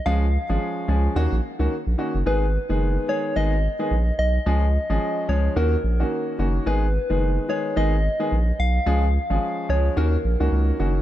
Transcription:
X:1
M:4/4
L:1/16
Q:"Swing 16ths" 1/4=109
K:Abdor
V:1 name="Soft synth lead"
f8 z8 | c6 d2 e6 e2- | e6 d2 B6 z2 | c6 d2 e6 f2- |
f6 d2 B6 z2 |]
V:2 name="Grand piano"
[F,A,DA] z2 [F,A,DA]3 [F,A,DA]2 [E,B,DG] z2 [E,B,DG] z2 [E,B,DG] z | [E,A,CA] z2 [E,A,CA]3 [E,A,CA]2 [E,A,CA] z2 [E,A,CA] z4 | [F,A,DA] z2 [F,A,DA]3 [F,A,DA]2 [E,B,DG] z2 [E,B,DG]3 [E,B,DG]2 | [E,A,CA] z2 [E,A,CA]3 [E,A,CA]2 [E,A,CA] z2 [E,A,CA] z4 |
[F,A,DA] z2 [F,A,DA]3 [F,A,DA]2 [E,B,DG] z2 [E,B,DG]3 [E,B,DG]2 |]
V:3 name="Sub bass" clef=bass
D,,3 A,,, z2 D,,2 E,, B,,, z D,, z B,,, z G,,, | A,,,3 G,,,3 z2 A,,,3 z B,,,2 C,,2 | D,,3 A,,, z2 D,,2 E,,2 B,,,2 z2 G,,,2 | A,,,3 G,,,3 z2 A,,,3 z B,,,2 C,,2 |
D,,3 A,,, z2 D,,2 E,,2 B,,, D,, D,,2 G,,,2 |]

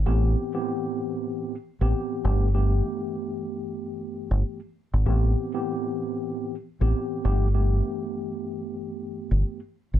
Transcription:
X:1
M:4/4
L:1/16
Q:"Swing 16ths" 1/4=96
K:Am
V:1 name="Tine electric piano"
[A,,E,B,CG]3 [A,,E,B,CG]6 z2 [A,,E,B,CG]3 [G,,E,A,B,G] z | [G,,E,A,B,G]12- [G,,E,A,B,G] z3 | [A,,E,B,CG]3 [A,,E,B,CG]6 z2 [A,,E,B,CG]3 [G,,E,A,B,G] z | [G,,E,A,B,G]12- [G,,E,A,B,G] z3 |]
V:2 name="Fingered electric bass" clef=bass
A,,,2 z8 z A,,, z2 G,,,2- | G,,,2 z8 z G,,, z3 ^G,,, | A,,,2 z8 z A,,, z2 G,,,2- | G,,,2 z8 z G,,, z3 ^G,,, |]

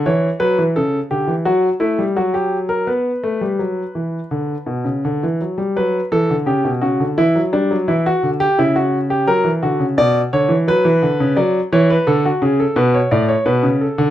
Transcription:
X:1
M:4/4
L:1/16
Q:1/4=86
K:Bm
V:1 name="Grand piano"
c2 B2 A2 G2 F2 E2 F G2 ^A | B12- B2 z2 | B2 A2 G2 F2 E2 D2 E F2 G | E F2 G ^A2 F2 d2 c2 B4 |
d2 c B A F ^G A B c d c B2 A2 |]
V:2 name="Grand piano" clef=bass
E,2 F, E, C,2 D, E, F,2 A, G, F,4 | B,2 A, G, F,2 E,2 D,2 B,, C, D, E, F, G, | F,2 E, D, C, B,, C, D, E, F, G, F, E,2 D,2 | C,4 F, E, D, C, B,,2 D, E, F, E, D, C, |
F,2 E,2 D,2 C,2 B,,2 A,,2 B,, C,2 D, |]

